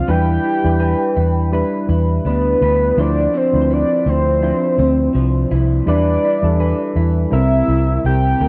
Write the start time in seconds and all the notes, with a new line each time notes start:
Already playing: F3 C4 F5
0.08 E2 E3 G3 D4 E4 B4 G5
0.44 E4
0.63 E2 G3 D4 E4 B4
0.80 B4
1.16 E2 E4
1.52 G3 D4 E4 B4
1.89 E2 E4
2.25 D2 D4 B4
2.61 D2 B4
2.97 D2 D3 F3 D4 E4 C5 D5
3.34 C4 C5
3.53 D2 F3 D4 E4 B4
3.62 C5
3.70 E4 D5
4.06 D2 C4 C5
4.41 F3 D4 E4 C5
4.78 D2 C4
5.15 C2 F3
5.51 C2 E4
5.86 E2 E3 G3 D4 E4 B4 D5
6.25 E4
6.42 E2 G3 D4 E4 A4
6.60 B4
6.96 E2 E4
7.30 C2 C3 G3 C4 E4 A#4 E5
7.68 C2 E4
8.04 C2 C4 G5
8.40 D2 A#4